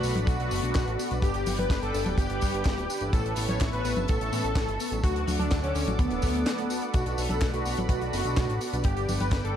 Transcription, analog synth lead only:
0, 0, Header, 1, 2, 480
1, 0, Start_track
1, 0, Key_signature, 2, "minor"
1, 0, Tempo, 476190
1, 1238, Time_signature, 4, 2, 24, 8
1, 9642, End_track
2, 0, Start_track
2, 0, Title_t, "Analog synth lead"
2, 0, Program_c, 0, 81
2, 0, Note_on_c, 0, 66, 98
2, 165, Note_off_c, 0, 66, 0
2, 277, Note_on_c, 0, 66, 104
2, 1141, Note_off_c, 0, 66, 0
2, 1237, Note_on_c, 0, 67, 102
2, 1486, Note_off_c, 0, 67, 0
2, 1598, Note_on_c, 0, 71, 90
2, 1763, Note_off_c, 0, 71, 0
2, 1837, Note_on_c, 0, 69, 100
2, 2085, Note_off_c, 0, 69, 0
2, 2196, Note_on_c, 0, 67, 107
2, 3061, Note_off_c, 0, 67, 0
2, 3157, Note_on_c, 0, 69, 106
2, 3405, Note_off_c, 0, 69, 0
2, 3518, Note_on_c, 0, 73, 89
2, 3683, Note_off_c, 0, 73, 0
2, 3758, Note_on_c, 0, 71, 98
2, 4006, Note_off_c, 0, 71, 0
2, 4120, Note_on_c, 0, 69, 108
2, 4983, Note_off_c, 0, 69, 0
2, 5078, Note_on_c, 0, 66, 107
2, 5326, Note_off_c, 0, 66, 0
2, 5437, Note_on_c, 0, 62, 92
2, 5603, Note_off_c, 0, 62, 0
2, 5676, Note_on_c, 0, 61, 98
2, 5925, Note_off_c, 0, 61, 0
2, 6036, Note_on_c, 0, 59, 105
2, 6901, Note_off_c, 0, 59, 0
2, 6996, Note_on_c, 0, 66, 104
2, 7245, Note_off_c, 0, 66, 0
2, 7356, Note_on_c, 0, 69, 88
2, 7523, Note_off_c, 0, 69, 0
2, 7595, Note_on_c, 0, 66, 100
2, 7844, Note_off_c, 0, 66, 0
2, 7956, Note_on_c, 0, 66, 106
2, 8821, Note_off_c, 0, 66, 0
2, 8917, Note_on_c, 0, 67, 103
2, 9165, Note_off_c, 0, 67, 0
2, 9277, Note_on_c, 0, 71, 90
2, 9443, Note_off_c, 0, 71, 0
2, 9519, Note_on_c, 0, 69, 94
2, 9642, Note_off_c, 0, 69, 0
2, 9642, End_track
0, 0, End_of_file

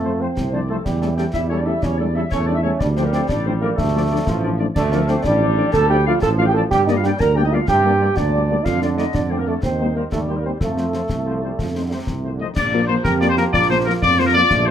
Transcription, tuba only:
0, 0, Header, 1, 2, 480
1, 0, Start_track
1, 0, Tempo, 325203
1, 1256, Time_signature, 6, 3, 24, 8
1, 21708, End_track
2, 0, Start_track
2, 0, Title_t, "Tuba"
2, 0, Program_c, 0, 58
2, 0, Note_on_c, 0, 41, 57
2, 419, Note_off_c, 0, 41, 0
2, 546, Note_on_c, 0, 36, 60
2, 1142, Note_off_c, 0, 36, 0
2, 1270, Note_on_c, 0, 40, 69
2, 1864, Note_off_c, 0, 40, 0
2, 1987, Note_on_c, 0, 40, 67
2, 2583, Note_off_c, 0, 40, 0
2, 2706, Note_on_c, 0, 40, 66
2, 3303, Note_off_c, 0, 40, 0
2, 3430, Note_on_c, 0, 40, 69
2, 4025, Note_off_c, 0, 40, 0
2, 4153, Note_on_c, 0, 38, 74
2, 4747, Note_off_c, 0, 38, 0
2, 4876, Note_on_c, 0, 33, 67
2, 5469, Note_off_c, 0, 33, 0
2, 5594, Note_on_c, 0, 38, 67
2, 6188, Note_off_c, 0, 38, 0
2, 6306, Note_on_c, 0, 33, 70
2, 6905, Note_off_c, 0, 33, 0
2, 7029, Note_on_c, 0, 38, 75
2, 7626, Note_off_c, 0, 38, 0
2, 7750, Note_on_c, 0, 33, 78
2, 8298, Note_off_c, 0, 33, 0
2, 8477, Note_on_c, 0, 38, 78
2, 9071, Note_off_c, 0, 38, 0
2, 9197, Note_on_c, 0, 33, 79
2, 9791, Note_off_c, 0, 33, 0
2, 9918, Note_on_c, 0, 43, 72
2, 10511, Note_off_c, 0, 43, 0
2, 10631, Note_on_c, 0, 38, 74
2, 11228, Note_off_c, 0, 38, 0
2, 11360, Note_on_c, 0, 43, 75
2, 11953, Note_off_c, 0, 43, 0
2, 12067, Note_on_c, 0, 38, 76
2, 12666, Note_off_c, 0, 38, 0
2, 12789, Note_on_c, 0, 41, 72
2, 13387, Note_off_c, 0, 41, 0
2, 13506, Note_on_c, 0, 41, 67
2, 14105, Note_off_c, 0, 41, 0
2, 14218, Note_on_c, 0, 39, 68
2, 14821, Note_off_c, 0, 39, 0
2, 14941, Note_on_c, 0, 39, 61
2, 15542, Note_off_c, 0, 39, 0
2, 15663, Note_on_c, 0, 41, 58
2, 16262, Note_off_c, 0, 41, 0
2, 16388, Note_on_c, 0, 36, 54
2, 16985, Note_off_c, 0, 36, 0
2, 17111, Note_on_c, 0, 41, 55
2, 17705, Note_off_c, 0, 41, 0
2, 17823, Note_on_c, 0, 36, 50
2, 18363, Note_off_c, 0, 36, 0
2, 18542, Note_on_c, 0, 34, 71
2, 19140, Note_off_c, 0, 34, 0
2, 19262, Note_on_c, 0, 41, 79
2, 19859, Note_off_c, 0, 41, 0
2, 19981, Note_on_c, 0, 34, 75
2, 20578, Note_off_c, 0, 34, 0
2, 20705, Note_on_c, 0, 41, 79
2, 21299, Note_off_c, 0, 41, 0
2, 21420, Note_on_c, 0, 34, 82
2, 21708, Note_off_c, 0, 34, 0
2, 21708, End_track
0, 0, End_of_file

